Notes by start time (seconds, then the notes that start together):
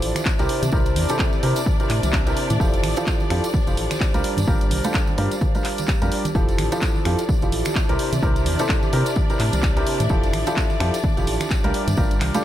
Already playing: F3 D4 E4 F4 G4 A4 C5 D5 E5
0.02 A1, open hi-hat
0.15 finger snap, closed hi-hat, tambourine, high conga
0.25 kick, clap, tambourine
0.39 C2 C3 C4 E4 G4 A#4, closed hi-hat, tambourine
0.49 open hi-hat
0.63 C3, closed hi-hat, tambourine, high conga
0.71 C2 C3 C4 E4 G4 A#4, kick, tambourine
0.86 closed hi-hat, tambourine
0.96 E2, open hi-hat, high conga
1.09 C3 C4 E4 G4 A4, closed hi-hat, tambourine
1.19 kick, clap, tambourine
1.33 tambourine, high conga
1.43 C3 C4 E4 G4 A#4, open hi-hat
1.56 closed hi-hat, tambourine
1.66 kick, tambourine, high conga
1.80 C3 C4 E4 G4 A#4, closed hi-hat, tambourine
1.89 A2, clap, open hi-hat
2.03 C2, closed hi-hat, tambourine, high conga
2.13 kick, clap, tambourine
2.27 C3 C4 E4 G4 A#4, closed hi-hat, tambourine
2.37 open hi-hat
2.50 A2, closed hi-hat, tambourine, high conga
2.60 F1 F3 E4 F4 G4 A4, kick, tambourine
2.74 closed hi-hat, tambourine
2.83 A1, finger snap, open hi-hat, high conga
2.96 F3 E4 F4 G4 A4, closed hi-hat, tambourine
3.07 kick, clap, tambourine
3.20 tambourine, high conga
3.30 F2 F3 E4 F4 G4 A4, finger snap, open hi-hat
3.44 closed hi-hat, tambourine
3.54 kick, tambourine, high conga
3.67 F1 F3 E4 F4 G4 A4, closed hi-hat, tambourine
3.77 A1, open hi-hat
3.91 finger snap, closed hi-hat, tambourine, high conga
4.00 kick, clap, tambourine
4.14 C2 G3 D4 F4 G4 A#4, closed hi-hat, tambourine
4.24 open hi-hat
4.37 G2, closed hi-hat, tambourine, high conga
4.47 G1 G3 D4 F4 G4 A#4, kick, tambourine
4.61 closed hi-hat, tambourine
4.71 C2, open hi-hat, high conga
4.77 F5
4.84 G3 D4 F4 G4 A4, closed hi-hat, tambourine
4.94 kick, clap, tambourine
5.07 tambourine, high conga
5.18 G2 G3 D4 F4 G4 A#4, open hi-hat
5.31 closed hi-hat, tambourine
5.41 kick, tambourine, high conga
5.55 G3 D4 F4 G4 A#4, closed hi-hat, tambourine
5.64 clap, open hi-hat
5.78 closed hi-hat, tambourine, high conga
5.88 kick, clap, tambourine
6.02 F2 G3 D4 F4 G4 A#4, closed hi-hat, tambourine
6.12 open hi-hat
6.25 closed hi-hat, tambourine, high conga
6.35 F1 F3 D4 E4 F4 G4 A4 D5, kick, tambourine
6.49 closed hi-hat, tambourine
6.58 A1, finger snap, open hi-hat, high conga
6.72 F3 E4 F4 G4 A4, closed hi-hat, tambourine
6.81 kick, clap, tambourine
6.95 tambourine, high conga
7.05 F2 F3 E4 F4 G4 A4, finger snap, open hi-hat
7.09 E5
7.18 closed hi-hat, tambourine
7.29 kick, tambourine, high conga
7.42 F1 F3 E4 F4 G4 A4, closed hi-hat, tambourine
7.52 A1, open hi-hat
7.65 finger snap, closed hi-hat, tambourine, high conga
7.75 kick, clap, tambourine
7.89 C2 C3 C4 E4 G4 A#4, closed hi-hat, tambourine
7.99 open hi-hat
8.13 C3, closed hi-hat, tambourine, high conga
8.23 C2 C3 C4 E4 G4 A#4, kick, tambourine
8.36 closed hi-hat, tambourine
8.46 E2, open hi-hat, high conga
8.59 C3 C4 E4 G4 A4, closed hi-hat, tambourine
8.69 kick, clap, tambourine
8.83 tambourine, high conga
8.93 C3 C4 E4 G4 A#4, open hi-hat
9.06 closed hi-hat, tambourine
9.16 kick, tambourine, high conga
9.30 C3 C4 E4 G4 A#4, closed hi-hat, tambourine
9.39 A2, clap, open hi-hat
9.53 C2, closed hi-hat, tambourine, high conga
9.63 kick, clap, tambourine
9.77 C3 C4 E4 G4 A#4, closed hi-hat, tambourine
9.87 open hi-hat
10.00 A2, closed hi-hat, tambourine, high conga
10.09 F1 F3 E4 F4 G4 A4, kick, tambourine
10.23 closed hi-hat, tambourine
10.33 A1, finger snap, open hi-hat, high conga
10.47 F3 E4 F4 G4 A4, closed hi-hat, tambourine
10.56 kick, clap, tambourine
10.70 tambourine, high conga
10.80 F2 F3 E4 F4 G4 A4, finger snap, open hi-hat
10.94 closed hi-hat, tambourine
11.03 kick, tambourine, high conga
11.17 F1 F3 E4 F4 G4 A4, closed hi-hat, tambourine
11.27 A1, open hi-hat
11.40 finger snap, closed hi-hat, tambourine, high conga
11.50 kick, clap, tambourine
11.64 C2 G3 D4 F4 G4 A#4, closed hi-hat, tambourine
11.74 G4, open hi-hat
11.88 G2, closed hi-hat, tambourine, high conga
11.97 G1 G3 D4 F4 G4 A#4, kick, tambourine
12.11 closed hi-hat, tambourine
12.21 C2, finger snap, clap, open hi-hat, high conga
12.34 G3 D4 F4 G4 A4, closed hi-hat, tambourine